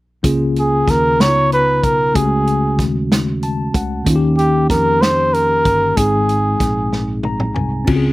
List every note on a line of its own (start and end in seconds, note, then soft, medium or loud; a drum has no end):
0.23 0.84 C#2 medium
0.23 1.16 C#3 medium
0.23 1.19 A#3 medium
0.23 1.20 C#4 medium
0.23 1.20 F4 medium
0.23 1.20 G#4 medium
0.23 kick medium
0.23 closed hi-hat medium
0.56 0.92 G#4 medium
0.56 closed hi-hat soft
0.88 1.21 D#2 medium
0.88 1.22 A#4 medium
0.88 kick medium
0.88 snare soft
0.88 closed hi-hat medium
1.19 1.84 C#2 medium
1.19 2.12 C#3 soft
1.19 2.15 B3 soft
1.19 2.15 D#4 soft
1.19 1.27 E4 soft
1.19 1.52 C#5 medium
1.19 2.16 A#5 medium
1.19 snare medium
1.19 closed hi-hat medium
1.27 2.19 F4 soft
1.52 1.85 B4 medium
1.52 closed hi-hat soft
1.83 2.13 B1 medium
1.83 2.17 A#4 medium
1.83 kick medium
1.83 closed hi-hat medium
2.14 2.79 C#2 medium
2.14 3.07 C#3 medium
2.14 4.02 A3 medium
2.14 4.02 C#4 soft
2.14 4.03 F#4 soft
2.14 2.87 G#4 medium
2.14 kick medium
2.14 closed hi-hat medium
2.18 2.23 G4 soft
2.24 4.07 G#3 medium
2.47 closed hi-hat soft
2.79 3.70 D#2 medium
2.79 kick medium
2.79 snare soft
2.79 closed hi-hat soft
3.12 snare medium
3.12 closed hi-hat medium
3.42 3.73 A5 medium
3.42 closed hi-hat soft
3.74 4.04 C#2 medium
3.74 4.05 F#5 medium
3.74 kick medium
3.74 closed hi-hat medium
4.05 4.66 D#2 medium
4.05 4.98 D#3 medium
4.05 5.93 A#3 medium
4.05 5.93 C#4 medium
4.05 5.94 D#4 medium
4.05 kick medium
4.05 closed hi-hat medium
4.09 4.14 F4 medium
4.16 5.98 G4 medium
4.38 4.67 G4 medium
4.38 closed hi-hat soft
4.70 5.61 F2 medium
4.70 5.03 A#4 medium
4.70 kick medium
4.70 snare soft
4.70 closed hi-hat medium
5.01 5.35 C5 medium
5.01 snare medium
5.01 closed hi-hat medium
5.34 5.98 A#4 medium
5.34 closed hi-hat soft
5.65 5.95 G1 medium
5.65 kick medium
5.65 closed hi-hat soft
5.95 6.57 G#1 medium
5.95 6.89 G#2 soft
5.95 7.83 G#3 medium
5.95 7.84 C4 soft
5.95 7.84 D#4 soft
5.95 7.24 G#4 medium
5.95 kick medium
5.95 closed hi-hat medium
6.00 7.85 G#4 medium
6.29 closed hi-hat soft
6.60 7.52 A#1 medium
6.60 kick medium
6.60 snare soft
6.60 closed hi-hat medium
6.93 snare soft
7.23 7.54 A#5 medium
7.23 high tom medium
7.40 mid tom medium
7.55 7.86 C2 medium
7.55 7.85 G#5 soft
7.55 mid tom medium
7.85 8.13 C#2 medium
7.85 8.13 C#3 medium
7.85 8.13 C4 medium
7.85 8.13 C#4 medium
7.85 8.13 F4 medium
7.85 7.95 F#4 medium
7.85 kick medium
7.85 crash medium
7.96 8.13 G#4 medium